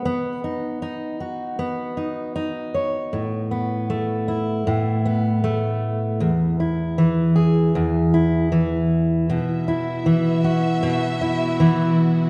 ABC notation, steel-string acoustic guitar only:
X:1
M:4/4
L:1/8
Q:"Swing 16ths" 1/4=78
K:Alyd
V:1 name="Steel-string acoustic guitar"
B, D D F B, D D c | A,, B, A, E A,, B, A,2 | E,, E E, G E,, E E,2 | B,, E E, F B,, E E,2 |]